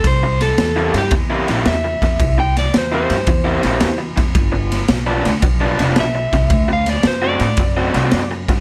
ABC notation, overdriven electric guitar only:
X:1
M:4/4
L:1/16
Q:"Swing" 1/4=111
K:C
V:1 name="Overdriven electric guitar"
z4 z [C,G,_B,E] z3 [C,G,B,E] [C,G,B,E] [C,G,B,E] z4 | z4 z [C,G,_B,E] z3 [C,G,B,E] [C,G,B,E] [C,G,B,E] z4 | z4 z [G,,F,B,D] z3 [G,,F,B,D] [G,,F,B,D] [G,,F,B,D] z4 | z4 z [D,A,C^F] z3 [D,A,CF] [D,A,CF] [D,A,CF] z4 |]